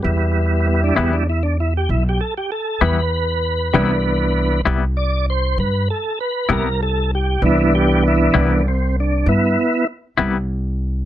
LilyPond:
<<
  \new Staff \with { instrumentName = "Tonewheel organ" } { \time 12/8 \key c \lydian \tempo 4. = 65 r4 b16 d'16 r16 d'16 e'16 d'16 e'16 g'16 e'16 g'16 a'16 g'16 a'8 b'4.~ | b'4. r8 d''8 c''8 b'8 a'8 b'8 ais'8 a'8 g'8 | e'8 g'8 e'8 r8 c'8 d'8 <b e'>4 r2 | }
  \new Staff \with { instrumentName = "Tonewheel organ" } { \time 12/8 \key c \lydian <g b e'>4. <g b e'>8 r1 | <e b d'>4. r1 r8 | <e b d'>4. <e b d'>8 r1 | }
  \new Staff \with { instrumentName = "Clean electric guitar" } { \time 12/8 \key c \lydian r4. <e g b e'>8 r2 r8 <e g b e'>8 r4 | <c g b e'>8 r4 <c g b e'>8 r2 r8 <c g b e'>8 r4 | r4. <c g b e'>8 r2 r8 <c g b e'>8 r4 | }
  \new Staff \with { instrumentName = "Upright bass" } { \clef bass \time 12/8 \key c \lydian e,4. e,4. b,,8 r4 e,4. | c,4. c,4. g,8 r4 c,4. | c,4. c,4. g,8 r4 c,4. | }
>>